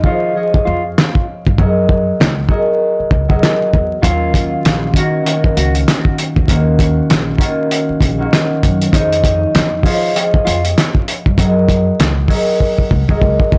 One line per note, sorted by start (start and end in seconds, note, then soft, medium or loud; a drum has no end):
0.04 0.33 F3 medium
0.04 0.33 F4 medium
0.04 0.34 G#4 medium
0.04 0.34 C5 medium
0.04 0.34 C#5 medium
0.04 0.34 D#5 loud
0.04 kick medium
0.35 1.63 F3 medium
0.35 1.64 F4 medium
0.35 1.59 G#4 medium
0.35 2.34 C5 loud
0.35 2.28 C#5 medium
0.35 1.60 D#5 loud
0.54 muted upright bass stroke soft
0.54 kick loud
0.65 0.92 F2 medium
0.65 0.82 F4 medium
0.98 snare loud
0.98 clap medium
1.15 kick medium
1.46 1.57 G2 medium
1.46 kick medium
1.58 2.09 F#2 loud
1.58 2.47 F#3 medium
1.58 2.48 F#4 medium
1.58 2.49 G#4 medium
1.58 2.50 A#4 medium
1.58 2.50 D#5 medium
1.58 kick loud
1.89 kick medium
2.20 2.45 C#2 medium
2.20 snare loud
2.20 clap loud
2.48 3.27 F#3 loud
2.48 3.29 F#4 medium
2.48 3.29 G#4 medium
2.48 3.30 A#4 medium
2.48 3.31 D#5 loud
2.48 kick medium
2.99 muted upright bass stroke soft
3.11 3.37 C#2 medium
3.11 kick medium
3.28 4.03 F#3 loud
3.28 3.85 F#4 medium
3.28 3.85 G#4 medium
3.28 3.85 A#4 medium
3.28 3.86 D#5 loud
3.28 kick medium
3.43 snare loud
3.43 clap medium
3.74 3.99 E2 medium
3.74 kick medium
4.01 4.54 D#2 loud
4.01 4.93 D#3 medium
4.01 5.00 F#3 loud
4.01 4.94 A#3 medium
4.01 4.95 C#4 medium
4.01 4.91 F4 loud
4.01 4.96 F4 medium
4.01 kick loud
4.01 closed hi-hat medium
4.34 kick medium
4.34 closed hi-hat medium
4.65 4.90 A#1 loud
4.65 snare loud
4.65 clap medium
4.65 closed hi-hat loud
4.94 5.23 D#3 loud
4.94 5.23 A#3 medium
4.94 5.24 C#4 medium
4.94 5.24 F4 medium
4.94 5.25 F#4 loud
4.94 5.24 F#4 medium
4.94 kick medium
4.94 closed hi-hat medium
5.24 6.46 D#3 loud
5.24 6.47 A#3 medium
5.24 6.48 C#4 medium
5.24 6.49 F4 medium
5.24 6.49 F#4 loud
5.24 closed hi-hat medium
5.44 muted upright bass stroke soft
5.44 kick loud
5.57 5.82 C#2 medium
5.57 5.73 F#4 medium
5.57 closed hi-hat medium
5.75 closed hi-hat soft
5.88 snare loud
5.88 clap medium
5.88 closed hi-hat medium
6.05 kick medium
6.18 closed hi-hat medium
6.36 6.47 E2 medium
6.36 kick medium
6.47 6.99 D#2 loud
6.47 7.36 D#3 medium
6.47 7.38 A#3 medium
6.47 7.38 C#4 medium
6.47 7.39 F4 medium
6.47 7.40 F#4 loud
6.47 kick loud
6.47 closed hi-hat medium
6.79 kick medium
6.79 closed hi-hat medium
7.10 7.35 A#1 medium
7.10 snare loud
7.10 clap loud
7.10 closed hi-hat medium
7.37 8.17 D#3 loud
7.37 8.18 A#3 medium
7.37 8.19 C#4 medium
7.37 8.20 F4 medium
7.37 8.20 F#4 loud
7.37 kick medium
7.37 closed hi-hat medium
7.71 closed hi-hat medium
7.89 muted upright bass stroke soft
8.01 8.26 A#1 medium
8.01 kick medium
8.01 closed hi-hat medium
8.18 8.98 D#3 medium
8.18 8.75 A#3 medium
8.18 8.75 C#4 medium
8.18 8.75 F4 medium
8.18 8.75 F#4 loud
8.33 snare loud
8.33 clap medium
8.33 closed hi-hat medium
8.63 8.88 F#2 medium
8.63 kick medium
8.63 closed hi-hat medium
8.81 closed hi-hat soft
8.91 9.44 F2 loud
8.91 9.82 F3 medium
8.91 9.82 D#4 medium
8.91 9.83 F4 medium
8.91 9.84 G#4 medium
8.91 9.84 C5 medium
8.91 9.85 C#5 medium
8.91 9.85 D#5 medium
8.91 kick loud
8.91 closed hi-hat medium
9.13 closed hi-hat medium
9.24 kick medium
9.24 closed hi-hat medium
9.55 9.80 F2 medium
9.55 snare loud
9.55 clap medium
9.55 closed hi-hat loud
9.83 10.13 F3 medium
9.83 10.13 F4 medium
9.83 10.13 G#4 medium
9.83 10.13 C5 medium
9.83 10.14 C#5 medium
9.83 10.14 D#5 loud
9.83 kick medium
9.83 open hi-hat medium
10.14 11.43 F3 medium
10.14 11.44 F4 medium
10.14 11.39 G#4 medium
10.14 12.14 C5 loud
10.14 12.08 C#5 medium
10.14 11.40 D#5 loud
10.14 closed hi-hat medium
10.34 muted upright bass stroke soft
10.34 kick loud
10.45 10.72 F2 medium
10.45 10.62 F4 medium
10.45 closed hi-hat medium
10.65 closed hi-hat soft
10.78 snare loud
10.78 clap medium
10.78 closed hi-hat loud
10.95 kick medium
11.08 closed hi-hat medium
11.26 11.36 G2 medium
11.26 kick medium
11.38 11.89 F#2 loud
11.38 12.26 F#3 medium
11.38 12.28 F#4 medium
11.38 12.29 G#4 medium
11.38 12.29 A#4 medium
11.38 12.30 D#5 loud
11.38 kick loud
11.38 closed hi-hat medium
11.69 kick medium
11.69 closed hi-hat medium
12.00 12.25 C#2 loud
12.00 snare loud
12.00 clap loud
12.00 closed hi-hat loud
12.28 13.07 F#3 loud
12.28 13.08 F#4 medium
12.28 13.09 G#4 medium
12.28 13.10 A#4 medium
12.28 13.10 D#5 loud
12.28 kick medium
12.28 open hi-hat medium
12.60 kick medium
12.78 kick medium
12.91 13.06 C#2 medium
12.91 kick medium
13.08 13.20 A#1 medium
13.08 13.58 F#3 loud
13.08 13.58 F#4 medium
13.08 13.58 G#4 medium
13.08 13.58 A#4 medium
13.08 13.58 D#5 loud
13.08 kick medium
13.22 13.37 C#2 medium
13.22 kick medium
13.40 kick medium
13.52 13.58 F2 medium
13.52 kick medium